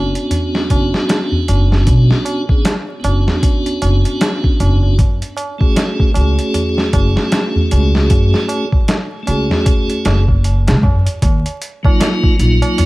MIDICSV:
0, 0, Header, 1, 5, 480
1, 0, Start_track
1, 0, Tempo, 779221
1, 1152, Time_signature, 4, 2, 24, 8
1, 7920, End_track
2, 0, Start_track
2, 0, Title_t, "Tonewheel organ"
2, 0, Program_c, 0, 16
2, 0, Note_on_c, 0, 59, 92
2, 0, Note_on_c, 0, 61, 77
2, 0, Note_on_c, 0, 62, 84
2, 0, Note_on_c, 0, 66, 97
2, 1490, Note_off_c, 0, 59, 0
2, 1498, Note_off_c, 0, 61, 0
2, 1506, Note_off_c, 0, 62, 0
2, 1514, Note_off_c, 0, 66, 0
2, 1524, Note_on_c, 0, 59, 70
2, 1532, Note_on_c, 0, 61, 63
2, 1539, Note_on_c, 0, 62, 66
2, 1549, Note_on_c, 0, 68, 71
2, 1638, Note_off_c, 0, 59, 0
2, 1642, Note_off_c, 0, 61, 0
2, 1646, Note_off_c, 0, 62, 0
2, 1650, Note_off_c, 0, 68, 0
2, 1847, Note_on_c, 0, 59, 86
2, 1865, Note_on_c, 0, 61, 78
2, 1878, Note_on_c, 0, 62, 80
2, 1895, Note_on_c, 0, 66, 89
2, 3048, Note_off_c, 0, 59, 0
2, 3057, Note_off_c, 0, 61, 0
2, 3064, Note_off_c, 0, 62, 0
2, 3072, Note_off_c, 0, 66, 0
2, 3440, Note_on_c, 0, 57, 90
2, 3448, Note_on_c, 0, 61, 84
2, 3457, Note_on_c, 0, 66, 85
2, 3465, Note_on_c, 0, 68, 100
2, 3759, Note_off_c, 0, 57, 0
2, 3765, Note_off_c, 0, 61, 0
2, 3766, Note_on_c, 0, 57, 91
2, 3769, Note_off_c, 0, 66, 0
2, 3774, Note_off_c, 0, 68, 0
2, 3783, Note_on_c, 0, 61, 90
2, 3799, Note_on_c, 0, 66, 86
2, 3815, Note_on_c, 0, 68, 101
2, 5328, Note_off_c, 0, 57, 0
2, 5336, Note_off_c, 0, 61, 0
2, 5344, Note_off_c, 0, 66, 0
2, 5352, Note_off_c, 0, 68, 0
2, 5685, Note_on_c, 0, 57, 83
2, 5703, Note_on_c, 0, 61, 77
2, 5719, Note_on_c, 0, 66, 80
2, 5735, Note_on_c, 0, 68, 94
2, 6293, Note_off_c, 0, 57, 0
2, 6302, Note_off_c, 0, 61, 0
2, 6310, Note_off_c, 0, 66, 0
2, 6318, Note_off_c, 0, 68, 0
2, 7286, Note_on_c, 0, 54, 97
2, 7295, Note_on_c, 0, 58, 82
2, 7302, Note_on_c, 0, 63, 83
2, 7310, Note_on_c, 0, 65, 99
2, 7601, Note_off_c, 0, 54, 0
2, 7608, Note_on_c, 0, 54, 96
2, 7609, Note_off_c, 0, 58, 0
2, 7612, Note_off_c, 0, 63, 0
2, 7616, Note_off_c, 0, 65, 0
2, 7624, Note_on_c, 0, 58, 85
2, 7639, Note_on_c, 0, 63, 87
2, 7656, Note_on_c, 0, 65, 111
2, 7920, Note_off_c, 0, 54, 0
2, 7920, Note_off_c, 0, 58, 0
2, 7920, Note_off_c, 0, 63, 0
2, 7920, Note_off_c, 0, 65, 0
2, 7920, End_track
3, 0, Start_track
3, 0, Title_t, "Upright bass"
3, 0, Program_c, 1, 32
3, 0, Note_on_c, 1, 30, 76
3, 81, Note_off_c, 1, 30, 0
3, 435, Note_on_c, 1, 30, 82
3, 559, Note_off_c, 1, 30, 0
3, 918, Note_on_c, 1, 30, 82
3, 1132, Note_off_c, 1, 30, 0
3, 1155, Note_on_c, 1, 35, 94
3, 1280, Note_off_c, 1, 35, 0
3, 1875, Note_on_c, 1, 30, 75
3, 2000, Note_off_c, 1, 30, 0
3, 2355, Note_on_c, 1, 30, 84
3, 2480, Note_off_c, 1, 30, 0
3, 2836, Note_on_c, 1, 30, 88
3, 3051, Note_off_c, 1, 30, 0
3, 3075, Note_on_c, 1, 42, 98
3, 3200, Note_off_c, 1, 42, 0
3, 3796, Note_on_c, 1, 37, 79
3, 3920, Note_off_c, 1, 37, 0
3, 4274, Note_on_c, 1, 30, 85
3, 4399, Note_off_c, 1, 30, 0
3, 4758, Note_on_c, 1, 37, 86
3, 4972, Note_off_c, 1, 37, 0
3, 4994, Note_on_c, 1, 42, 98
3, 5119, Note_off_c, 1, 42, 0
3, 5718, Note_on_c, 1, 37, 81
3, 5841, Note_off_c, 1, 37, 0
3, 6197, Note_on_c, 1, 30, 92
3, 6580, Note_on_c, 1, 37, 89
3, 6589, Note_off_c, 1, 30, 0
3, 6663, Note_off_c, 1, 37, 0
3, 6675, Note_on_c, 1, 42, 82
3, 6800, Note_off_c, 1, 42, 0
3, 6914, Note_on_c, 1, 39, 104
3, 7039, Note_off_c, 1, 39, 0
3, 7635, Note_on_c, 1, 34, 80
3, 7759, Note_off_c, 1, 34, 0
3, 7920, End_track
4, 0, Start_track
4, 0, Title_t, "Tabla"
4, 94, Note_on_c, 9, 60, 31
4, 155, Note_off_c, 9, 60, 0
4, 189, Note_on_c, 9, 60, 46
4, 190, Note_on_c, 9, 64, 64
4, 250, Note_off_c, 9, 60, 0
4, 252, Note_off_c, 9, 64, 0
4, 335, Note_on_c, 9, 60, 32
4, 396, Note_off_c, 9, 60, 0
4, 436, Note_on_c, 9, 60, 83
4, 498, Note_off_c, 9, 60, 0
4, 578, Note_on_c, 9, 60, 38
4, 640, Note_off_c, 9, 60, 0
4, 669, Note_on_c, 9, 60, 46
4, 730, Note_off_c, 9, 60, 0
4, 812, Note_on_c, 9, 64, 71
4, 874, Note_off_c, 9, 64, 0
4, 915, Note_on_c, 9, 60, 92
4, 977, Note_off_c, 9, 60, 0
4, 1055, Note_on_c, 9, 60, 35
4, 1117, Note_off_c, 9, 60, 0
4, 1152, Note_on_c, 9, 60, 43
4, 1214, Note_off_c, 9, 60, 0
4, 1387, Note_on_c, 9, 60, 81
4, 1449, Note_off_c, 9, 60, 0
4, 1537, Note_on_c, 9, 60, 36
4, 1598, Note_off_c, 9, 60, 0
4, 1635, Note_on_c, 9, 60, 45
4, 1697, Note_off_c, 9, 60, 0
4, 1778, Note_on_c, 9, 60, 29
4, 1840, Note_off_c, 9, 60, 0
4, 1875, Note_on_c, 9, 60, 87
4, 1937, Note_off_c, 9, 60, 0
4, 2013, Note_on_c, 9, 60, 33
4, 2016, Note_on_c, 9, 64, 53
4, 2075, Note_off_c, 9, 60, 0
4, 2078, Note_off_c, 9, 64, 0
4, 2114, Note_on_c, 9, 60, 52
4, 2175, Note_off_c, 9, 60, 0
4, 2255, Note_on_c, 9, 60, 36
4, 2317, Note_off_c, 9, 60, 0
4, 2352, Note_on_c, 9, 60, 82
4, 2414, Note_off_c, 9, 60, 0
4, 2494, Note_on_c, 9, 60, 34
4, 2556, Note_off_c, 9, 60, 0
4, 2599, Note_on_c, 9, 60, 50
4, 2660, Note_off_c, 9, 60, 0
4, 2832, Note_on_c, 9, 64, 61
4, 2835, Note_on_c, 9, 60, 82
4, 2893, Note_off_c, 9, 64, 0
4, 2896, Note_off_c, 9, 60, 0
4, 2974, Note_on_c, 9, 60, 33
4, 3036, Note_off_c, 9, 60, 0
4, 3070, Note_on_c, 9, 60, 44
4, 3132, Note_off_c, 9, 60, 0
4, 3306, Note_on_c, 9, 60, 87
4, 3367, Note_off_c, 9, 60, 0
4, 3455, Note_on_c, 9, 60, 36
4, 3516, Note_off_c, 9, 60, 0
4, 3548, Note_on_c, 9, 60, 46
4, 3610, Note_off_c, 9, 60, 0
4, 3698, Note_on_c, 9, 60, 28
4, 3760, Note_off_c, 9, 60, 0
4, 3784, Note_on_c, 9, 60, 85
4, 3846, Note_off_c, 9, 60, 0
4, 3932, Note_on_c, 9, 60, 35
4, 3994, Note_off_c, 9, 60, 0
4, 4029, Note_on_c, 9, 60, 44
4, 4031, Note_on_c, 9, 64, 71
4, 4091, Note_off_c, 9, 60, 0
4, 4092, Note_off_c, 9, 64, 0
4, 4171, Note_on_c, 9, 60, 30
4, 4233, Note_off_c, 9, 60, 0
4, 4272, Note_on_c, 9, 60, 82
4, 4333, Note_off_c, 9, 60, 0
4, 4410, Note_on_c, 9, 60, 39
4, 4472, Note_off_c, 9, 60, 0
4, 4509, Note_on_c, 9, 60, 46
4, 4571, Note_off_c, 9, 60, 0
4, 4657, Note_on_c, 9, 64, 81
4, 4718, Note_off_c, 9, 64, 0
4, 4753, Note_on_c, 9, 60, 77
4, 4815, Note_off_c, 9, 60, 0
4, 4897, Note_on_c, 9, 60, 36
4, 4958, Note_off_c, 9, 60, 0
4, 4990, Note_on_c, 9, 60, 46
4, 5051, Note_off_c, 9, 60, 0
4, 5134, Note_on_c, 9, 60, 36
4, 5196, Note_off_c, 9, 60, 0
4, 5227, Note_on_c, 9, 60, 90
4, 5288, Note_off_c, 9, 60, 0
4, 5374, Note_on_c, 9, 60, 37
4, 5435, Note_off_c, 9, 60, 0
4, 5471, Note_on_c, 9, 60, 46
4, 5532, Note_off_c, 9, 60, 0
4, 5613, Note_on_c, 9, 60, 32
4, 5674, Note_off_c, 9, 60, 0
4, 5711, Note_on_c, 9, 60, 89
4, 5773, Note_off_c, 9, 60, 0
4, 5852, Note_on_c, 9, 64, 52
4, 5854, Note_on_c, 9, 60, 31
4, 5913, Note_off_c, 9, 64, 0
4, 5915, Note_off_c, 9, 60, 0
4, 5948, Note_on_c, 9, 60, 49
4, 6010, Note_off_c, 9, 60, 0
4, 6096, Note_on_c, 9, 60, 35
4, 6158, Note_off_c, 9, 60, 0
4, 6195, Note_on_c, 9, 60, 84
4, 6257, Note_off_c, 9, 60, 0
4, 6332, Note_on_c, 9, 60, 34
4, 6394, Note_off_c, 9, 60, 0
4, 6436, Note_on_c, 9, 60, 51
4, 6497, Note_off_c, 9, 60, 0
4, 6574, Note_on_c, 9, 60, 36
4, 6635, Note_off_c, 9, 60, 0
4, 6672, Note_on_c, 9, 60, 79
4, 6673, Note_on_c, 9, 64, 59
4, 6734, Note_off_c, 9, 60, 0
4, 6735, Note_off_c, 9, 64, 0
4, 6810, Note_on_c, 9, 60, 35
4, 6871, Note_off_c, 9, 60, 0
4, 6917, Note_on_c, 9, 60, 63
4, 6978, Note_off_c, 9, 60, 0
4, 7058, Note_on_c, 9, 60, 38
4, 7119, Note_off_c, 9, 60, 0
4, 7302, Note_on_c, 9, 60, 82
4, 7363, Note_off_c, 9, 60, 0
4, 7393, Note_on_c, 9, 60, 69
4, 7455, Note_off_c, 9, 60, 0
4, 7540, Note_on_c, 9, 60, 31
4, 7602, Note_off_c, 9, 60, 0
4, 7774, Note_on_c, 9, 60, 78
4, 7836, Note_off_c, 9, 60, 0
4, 7875, Note_on_c, 9, 60, 68
4, 7879, Note_on_c, 9, 64, 92
4, 7920, Note_off_c, 9, 60, 0
4, 7920, Note_off_c, 9, 64, 0
4, 7920, End_track
5, 0, Start_track
5, 0, Title_t, "Drums"
5, 95, Note_on_c, 9, 42, 42
5, 156, Note_off_c, 9, 42, 0
5, 191, Note_on_c, 9, 42, 78
5, 252, Note_off_c, 9, 42, 0
5, 338, Note_on_c, 9, 38, 43
5, 400, Note_off_c, 9, 38, 0
5, 432, Note_on_c, 9, 36, 83
5, 432, Note_on_c, 9, 42, 59
5, 494, Note_off_c, 9, 36, 0
5, 494, Note_off_c, 9, 42, 0
5, 580, Note_on_c, 9, 38, 39
5, 642, Note_off_c, 9, 38, 0
5, 673, Note_on_c, 9, 42, 86
5, 676, Note_on_c, 9, 38, 106
5, 735, Note_off_c, 9, 42, 0
5, 738, Note_off_c, 9, 38, 0
5, 914, Note_on_c, 9, 42, 60
5, 975, Note_off_c, 9, 42, 0
5, 1061, Note_on_c, 9, 38, 39
5, 1122, Note_off_c, 9, 38, 0
5, 1151, Note_on_c, 9, 42, 84
5, 1152, Note_on_c, 9, 36, 98
5, 1213, Note_off_c, 9, 36, 0
5, 1213, Note_off_c, 9, 42, 0
5, 1298, Note_on_c, 9, 38, 36
5, 1360, Note_off_c, 9, 38, 0
5, 1391, Note_on_c, 9, 42, 63
5, 1452, Note_off_c, 9, 42, 0
5, 1535, Note_on_c, 9, 36, 95
5, 1596, Note_off_c, 9, 36, 0
5, 1631, Note_on_c, 9, 42, 86
5, 1634, Note_on_c, 9, 38, 113
5, 1693, Note_off_c, 9, 42, 0
5, 1696, Note_off_c, 9, 38, 0
5, 1872, Note_on_c, 9, 42, 63
5, 1934, Note_off_c, 9, 42, 0
5, 2019, Note_on_c, 9, 38, 45
5, 2081, Note_off_c, 9, 38, 0
5, 2112, Note_on_c, 9, 36, 101
5, 2113, Note_on_c, 9, 42, 79
5, 2173, Note_off_c, 9, 36, 0
5, 2174, Note_off_c, 9, 42, 0
5, 2256, Note_on_c, 9, 42, 40
5, 2318, Note_off_c, 9, 42, 0
5, 2352, Note_on_c, 9, 42, 59
5, 2414, Note_off_c, 9, 42, 0
5, 2497, Note_on_c, 9, 42, 41
5, 2558, Note_off_c, 9, 42, 0
5, 2592, Note_on_c, 9, 42, 86
5, 2596, Note_on_c, 9, 38, 115
5, 2654, Note_off_c, 9, 42, 0
5, 2657, Note_off_c, 9, 38, 0
5, 2735, Note_on_c, 9, 36, 93
5, 2797, Note_off_c, 9, 36, 0
5, 2834, Note_on_c, 9, 42, 62
5, 2896, Note_off_c, 9, 42, 0
5, 3072, Note_on_c, 9, 36, 100
5, 3073, Note_on_c, 9, 42, 77
5, 3133, Note_off_c, 9, 36, 0
5, 3134, Note_off_c, 9, 42, 0
5, 3216, Note_on_c, 9, 42, 41
5, 3277, Note_off_c, 9, 42, 0
5, 3311, Note_on_c, 9, 42, 60
5, 3373, Note_off_c, 9, 42, 0
5, 3454, Note_on_c, 9, 36, 99
5, 3516, Note_off_c, 9, 36, 0
5, 3551, Note_on_c, 9, 42, 88
5, 3554, Note_on_c, 9, 38, 114
5, 3613, Note_off_c, 9, 42, 0
5, 3616, Note_off_c, 9, 38, 0
5, 3694, Note_on_c, 9, 36, 92
5, 3755, Note_off_c, 9, 36, 0
5, 3791, Note_on_c, 9, 42, 63
5, 3852, Note_off_c, 9, 42, 0
5, 3934, Note_on_c, 9, 42, 40
5, 3995, Note_off_c, 9, 42, 0
5, 4030, Note_on_c, 9, 42, 80
5, 4092, Note_off_c, 9, 42, 0
5, 4177, Note_on_c, 9, 38, 41
5, 4238, Note_off_c, 9, 38, 0
5, 4270, Note_on_c, 9, 36, 92
5, 4270, Note_on_c, 9, 42, 66
5, 4332, Note_off_c, 9, 36, 0
5, 4332, Note_off_c, 9, 42, 0
5, 4416, Note_on_c, 9, 38, 43
5, 4478, Note_off_c, 9, 38, 0
5, 4509, Note_on_c, 9, 42, 82
5, 4512, Note_on_c, 9, 38, 110
5, 4570, Note_off_c, 9, 42, 0
5, 4573, Note_off_c, 9, 38, 0
5, 4751, Note_on_c, 9, 42, 61
5, 4813, Note_off_c, 9, 42, 0
5, 4897, Note_on_c, 9, 38, 39
5, 4959, Note_off_c, 9, 38, 0
5, 4989, Note_on_c, 9, 42, 84
5, 4991, Note_on_c, 9, 36, 109
5, 5051, Note_off_c, 9, 42, 0
5, 5052, Note_off_c, 9, 36, 0
5, 5138, Note_on_c, 9, 38, 38
5, 5199, Note_off_c, 9, 38, 0
5, 5231, Note_on_c, 9, 42, 65
5, 5292, Note_off_c, 9, 42, 0
5, 5374, Note_on_c, 9, 36, 97
5, 5436, Note_off_c, 9, 36, 0
5, 5471, Note_on_c, 9, 42, 82
5, 5474, Note_on_c, 9, 38, 113
5, 5533, Note_off_c, 9, 42, 0
5, 5536, Note_off_c, 9, 38, 0
5, 5712, Note_on_c, 9, 42, 65
5, 5774, Note_off_c, 9, 42, 0
5, 5859, Note_on_c, 9, 38, 48
5, 5921, Note_off_c, 9, 38, 0
5, 5951, Note_on_c, 9, 42, 82
5, 5952, Note_on_c, 9, 36, 110
5, 6013, Note_off_c, 9, 36, 0
5, 6013, Note_off_c, 9, 42, 0
5, 6096, Note_on_c, 9, 42, 44
5, 6157, Note_off_c, 9, 42, 0
5, 6191, Note_on_c, 9, 42, 71
5, 6194, Note_on_c, 9, 38, 100
5, 6253, Note_off_c, 9, 42, 0
5, 6256, Note_off_c, 9, 38, 0
5, 6335, Note_on_c, 9, 36, 83
5, 6397, Note_off_c, 9, 36, 0
5, 6433, Note_on_c, 9, 42, 58
5, 6495, Note_off_c, 9, 42, 0
5, 6577, Note_on_c, 9, 42, 77
5, 6580, Note_on_c, 9, 38, 106
5, 6638, Note_off_c, 9, 42, 0
5, 6641, Note_off_c, 9, 38, 0
5, 6673, Note_on_c, 9, 36, 77
5, 6734, Note_off_c, 9, 36, 0
5, 6816, Note_on_c, 9, 42, 61
5, 6878, Note_off_c, 9, 42, 0
5, 6913, Note_on_c, 9, 36, 108
5, 6913, Note_on_c, 9, 42, 88
5, 6974, Note_off_c, 9, 36, 0
5, 6974, Note_off_c, 9, 42, 0
5, 7058, Note_on_c, 9, 42, 44
5, 7120, Note_off_c, 9, 42, 0
5, 7155, Note_on_c, 9, 42, 71
5, 7217, Note_off_c, 9, 42, 0
5, 7297, Note_on_c, 9, 36, 105
5, 7358, Note_off_c, 9, 36, 0
5, 7396, Note_on_c, 9, 42, 96
5, 7399, Note_on_c, 9, 38, 117
5, 7457, Note_off_c, 9, 42, 0
5, 7460, Note_off_c, 9, 38, 0
5, 7537, Note_on_c, 9, 36, 91
5, 7598, Note_off_c, 9, 36, 0
5, 7635, Note_on_c, 9, 42, 64
5, 7697, Note_off_c, 9, 42, 0
5, 7776, Note_on_c, 9, 42, 42
5, 7838, Note_off_c, 9, 42, 0
5, 7874, Note_on_c, 9, 42, 86
5, 7920, Note_off_c, 9, 42, 0
5, 7920, End_track
0, 0, End_of_file